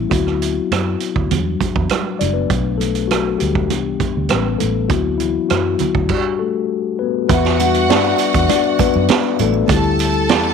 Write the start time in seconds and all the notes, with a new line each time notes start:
Already playing: E3 G3 B3 C#4 E4
0.10 D2 F#3 B3 C4 E4 F#4, kick, closed hi-hat, muted conga
0.27 cross-stick
0.42 closed hi-hat
0.71 F#2, cross-stick, closed hi-hat, high conga
1.00 closed hi-hat
1.16 D2, kick
1.30 E2 F#3 G3 D4, closed hi-hat, muted conga, low conga
1.61 muted fingered electric bass stroke, kick, closed hi-hat, muted conga
1.76 E2, kick
1.89 cross-stick, closed hi-hat, high conga
2.19 F#1 D4 D5, closed hi-hat, high conga
2.34 B3 B4
2.49 B1 F#3 A3 D4, kick, closed hi-hat, muted conga
2.78 A3 A4, closed hi-hat, muted conga
2.95 closed hi-hat
3.08 F#3 F#4, cross-stick, closed hi-hat, high conga
3.38 D2 G3 G4, closed hi-hat
3.55 kick
3.69 C2 E3 B3 D4, closed hi-hat, muted conga
4.00 muted fingered electric bass stroke, kick, closed hi-hat, muted conga
4.17 D2
4.29 A1 G3 B3 C#4 B4, cross-stick, closed hi-hat, high conga
4.59 A1 A3 A4, closed hi-hat, high conga
4.89 D2 F#3 B3 C4 E4 F#4, kick, closed hi-hat, muted conga
5.18 E3 E4, closed hi-hat, muted conga
5.49 F#2 F#3 F#4, cross-stick, closed hi-hat, high conga
5.79 closed hi-hat, low conga
5.95 D2, kick
6.09 G3 D4 F#4 G4, kick, crash
6.39 A3 A4
6.99 B3 B4
7.29 E2 B3 F#4 B4 E5 F#5, kick, closed hi-hat, muted conga, muted triangle
7.45 snare, muted triangle
7.59 G3 D4 F#4, closed hi-hat, muted conga, triangle
7.74 closed hi-hat, muted triangle
7.90 G2 D4 D5, snare, closed hi-hat, high conga, muted triangle
8.05 muted triangle
8.18 closed hi-hat, triangle
8.33 E2, kick, closed hi-hat, muted triangle
8.49 D4 D5, closed hi-hat, muted conga, muted triangle
8.64 muted triangle
8.79 B3 B4, muted fingered electric bass stroke, kick, closed hi-hat, muted conga, triangle
8.94 F#2, muted triangle
9.09 snare, closed hi-hat, high conga, muted triangle
9.24 muted triangle
9.39 A1 A3 A4, closed hi-hat, high conga, triangle
9.54 muted triangle
9.68 D2 G3 C4 G4 A4 A5, kick, closed hi-hat, muted conga, muted triangle
9.72 E4
9.84 muted triangle
9.99 closed hi-hat, triangle
10.14 muted triangle
10.29 E2, snare, closed hi-hat, high conga, muted triangle
10.43 muted triangle